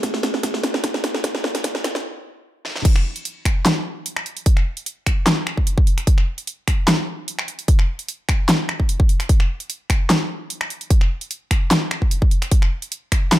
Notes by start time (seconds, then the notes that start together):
0.03 kick, snare, closed hi-hat
0.14 snare
0.23 snare, closed hi-hat
0.34 snare
0.43 kick, snare, closed hi-hat
0.54 snare
0.63 snare, closed hi-hat
0.74 snare
0.84 kick, snare, closed hi-hat
0.94 snare
1.04 snare, closed hi-hat
1.14 snare
1.24 kick, snare, closed hi-hat
1.35 snare
1.44 snare
1.55 snare, closed hi-hat
1.64 kick, snare, closed hi-hat
1.75 snare
1.84 snare, closed hi-hat
1.95 snare
2.65 snare
2.76 snare
2.85 kick, closed hi-hat, crash
2.96 finger snap
3.16 closed hi-hat
3.25 closed hi-hat
3.45 finger snap, kick, closed hi-hat
3.66 snare, clap, closed hi-hat
4.06 closed hi-hat
4.16 finger snap
4.26 closed hi-hat
4.37 closed hi-hat
4.46 kick, closed hi-hat
4.57 finger snap
4.77 closed hi-hat
4.86 closed hi-hat
5.06 finger snap, kick, closed hi-hat
5.27 snare, clap, closed hi-hat
5.47 finger snap
5.57 kick
5.67 closed hi-hat
5.78 kick
5.87 closed hi-hat
5.98 finger snap, closed hi-hat
6.07 kick, closed hi-hat
6.18 finger snap
6.38 closed hi-hat
6.47 closed hi-hat
6.68 finger snap, kick, closed hi-hat
6.88 snare, clap, closed hi-hat
7.28 closed hi-hat
7.39 finger snap
7.48 closed hi-hat
7.59 closed hi-hat
7.68 kick, closed hi-hat
7.79 finger snap
7.99 closed hi-hat
8.08 closed hi-hat
8.29 finger snap, kick, closed hi-hat
8.49 snare, clap, closed hi-hat
8.69 finger snap
8.80 kick
8.89 closed hi-hat
9.00 kick
9.09 closed hi-hat
9.20 finger snap, closed hi-hat
9.29 kick, closed hi-hat
9.40 finger snap
9.60 closed hi-hat
9.70 closed hi-hat
9.90 finger snap, kick, closed hi-hat
10.10 snare, clap, closed hi-hat
10.50 closed hi-hat
10.61 finger snap
10.70 closed hi-hat
10.81 closed hi-hat
10.90 kick, closed hi-hat
11.01 finger snap
11.21 closed hi-hat
11.31 closed hi-hat
11.51 finger snap, kick, closed hi-hat
11.71 snare, clap, closed hi-hat
11.91 finger snap
12.02 kick
12.11 closed hi-hat
12.22 kick
12.31 closed hi-hat
12.42 finger snap, closed hi-hat
12.52 kick, closed hi-hat
12.62 finger snap
12.82 closed hi-hat
12.92 closed hi-hat
13.12 finger snap, kick, closed hi-hat
13.32 snare, clap, closed hi-hat